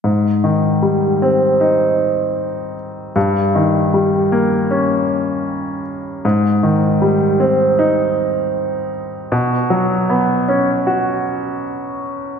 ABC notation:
X:1
M:4/4
L:1/8
Q:1/4=78
K:Ebmix
V:1 name="Grand piano" clef=bass
A,, E, G, C E4 | G,, E, G, B, D4 | A,, E, G, C E4 | =B,, ^F, =B, ^C ^F4 |]